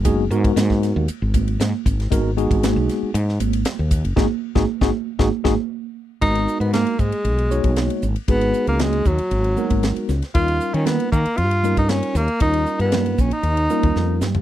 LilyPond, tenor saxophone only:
\new Staff \with { instrumentName = "Tenor saxophone" } { \time 4/4 \key gis \dorian \tempo 4 = 116 r1 | r1 | r1 | dis'8. b16 ais8 gis2 r8 |
b8. ais16 gis8 fis2 r8 | eis'8. cis'16 b8 ais8 eis'8. dis'16 cis'8 ais8 | dis'8. b8. cis'16 dis'4.~ dis'16 r8 | }